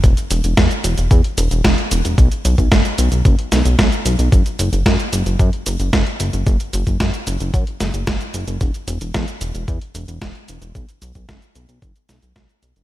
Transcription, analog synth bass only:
X:1
M:4/4
L:1/16
Q:1/4=112
K:Bdor
V:1 name="Analog synth bass" clef=bass
E,,, z E,,, E,,, E,, z E,,, E,,, E,, z E,,, E,,, E,,, z E,,, E,,, | B,,, z B,,, B,,, F,,, z B,,, B,,, F,,, z B,,, B,,, B,,, z B,,, B,,, | F,,, z F,,, F,,, F,, z F,,, F,,, F,, z F,,, F,,, F,,, z F,,, F,,, | F,,, z F,,, F,,, F,, z F,,, F,,, F,, z F,,, F,,, F,,, z F,,, F,,, |
E,,, z E,,, E,,, E,, z E,,, E,,, E,, z E,,, E,,, E,,, z E,,, E,,, | B,,, z B,,, B,,, F,,, z B,,, B,,, F,,, z B,,, B,,, B,,, z B,,, F,,, |]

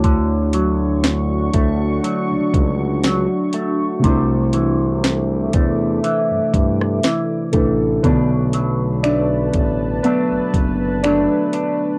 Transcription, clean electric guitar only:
X:1
M:4/4
L:1/8
Q:"Swing 16ths" 1/4=60
K:Dlyd
V:1 name="Clean electric guitar" clef=bass
D, F,2 A, F,2 F, A, | =C, E,2 A, E,2 E, A, | [B,,D] F, A,2 [F,A,D]2 [F,A,D] D |]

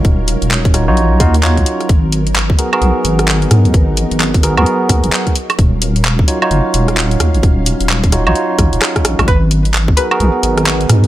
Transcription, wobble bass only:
X:1
M:4/4
L:1/16
Q:"Swing 16ths" 1/4=130
K:G#m
V:1 name="Wobble bass" clef=bass
D,,,3 D,,,4 A,,,3 D,,3 C,, z2 | G,,,6 z2 B,,, z G,,,4 G,, D,, | G,,,3 G,,,4 D,, z2 D,, G,,, z4 | D,,,6 z2 F,,, z D,,,4 D,, A,,, |
D,,,3 D,,,4 A,,, z2 A,,, D,,, z2 A,,, A,,, | G,,,6 z2 B,,, z G,,,4 G,, D,, |]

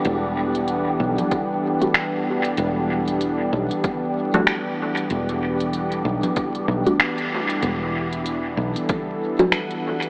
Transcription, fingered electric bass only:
X:1
M:4/4
L:1/8
Q:"Swing 16ths" 1/4=95
K:Em
V:1 name="Fingered electric bass" clef=bass
E,,,3 B,,, z4 | E,,,3 B,,, z4 | E,,,3 B,,, z B,,, z2 | E,,,3 B,,, z4 |]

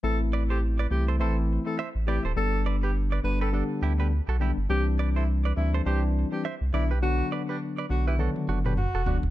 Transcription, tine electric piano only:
X:1
M:4/4
L:1/16
Q:"Swing 16ths" 1/4=103
K:Ador
V:1 name="Tine electric piano"
[E,A,CE]6 [E,A,CE]2 [E,A,CE]3 [E,A,CE] z2 [E,A,CE] z | [D,G,B,D]6 [D,G,B,D]2 [D,G,B,D]3 [D,G,B,D] z2 [D,G,B,D] z | [E,G,CD]6 [E,G,CD]2 [E,G,CD]3 [E,G,CD] z2 [D,F,B,D] z | [D,F,B,D]6 [D,F,B,D]2 [D,F,B,D]3 [D,F,B,D] z2 [D,F,B,D] z |]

